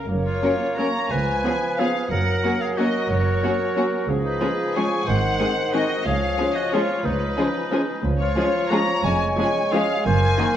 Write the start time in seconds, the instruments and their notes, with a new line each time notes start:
0.08 double bass section F#1, cello section F#2, bassoon A#3, clarinet C#5
0.25 oboe F4, violin section C#5
0.43 viola section F#3 A#3, french horn section A#3 C#4, violin section C#4 A#4
0.77 viola section F#3 A#3, french horn section A#3 C#4, violin section C#4 A#4 A#5, oboe C#5
1.11 cello section C#2, double bass section C#2, bassoon F3, oboe B4, clarinet B4, violin section G#5
1.44 viola section F3 B3, french horn section B3 F4, violin section C#4 G#4
1.79 viola section F3 B3, french horn section B3 F4, violin section C#4 G#4 F5, oboe G#4
2.11 double bass section F#1, cello section F#2, bassoon F#3, oboe A#4, clarinet A#4, violin section F#5
2.44 viola section F#3 A#3, french horn section A#3 F#4, violin section C#4 F#4
2.61 oboe G#4, violin section F5
2.77 viola section F#3 A#3, french horn section A#3 F#4, violin section C#4 F#4 D#5, oboe F#4
3.10 double bass section F#1, cello section F#2, oboe F#4, violin section C#5
3.43 viola section F#3 A#3, french horn section A#3 F#4, violin section C#4 F#4
3.77 viola section F#3 A#3, french horn section A#3 F#4, violin section C#4 F#4
4.08 double bass section C#2, cello section C#3, bassoon F3, clarinet G#4
4.24 oboe D#4, violin section B4
4.42 viola section F3 G#3, french horn section G#3 F4, violin section C#4 G#4
4.75 viola section F3 G#3, french horn section G#3 F4, violin section C#4 G#4 G#5, oboe C#5
5.07 double bass section G#1, cello section G#2, bassoon D#3, oboe C5, clarinet C5, violin section F#5
5.40 viola section D#3 G#3, violin section C4 G#4, french horn section C4 D#4
5.73 viola section D#3 G#3, violin section C4 G#4 D#5, french horn section C4 D#4, oboe F#4
6.06 cello section C#2, double bass section C#2, bassoon F3, oboe G#4, clarinet C#5, violin section F5
6.38 viola section F3 G#3, violin section C#4 G#4, french horn section C#4 F4
6.55 oboe F#4, violin section D#5
6.73 viola section F3 G#3, violin section C#4 G#4 C#5, french horn section C#4 F4, oboe F4
7.05 double bass section C#2, cello section C#2, oboe D#4, violin section B4
7.37 viola section F3 G#3, violin section C#4 G#4, french horn section C#4 F4
7.71 viola section F3 G#3, french horn section C#4 F4, violin section C#4 G#4
8.03 double bass section C#2, cello section C#2, bassoon F3, clarinet C#5
8.19 oboe F4, violin section C#5
8.36 viola section F3 G#3, violin section C#4 G#4, french horn section C#4 F4
8.70 viola section F3 G#3, violin section C#4 G#4 A#5, french horn section C#4 F4, oboe C#5
9.04 double bass section F1, cello section F2, bassoon G#3, oboe C#5, violin section G#5
9.38 viola section F3 G#3, french horn section C#4 F4, violin section C#4 G#4
9.73 viola section F3 G#3, violin section C#4 G#4 F5, french horn section C#4 F4, oboe G#4
10.05 double bass section F#1, cello section F#2, bassoon A#3, clarinet A#4, oboe C5, violin section G#5
10.39 viola section D#3 A#3, french horn section A#3 D#4, violin section D#4 F#4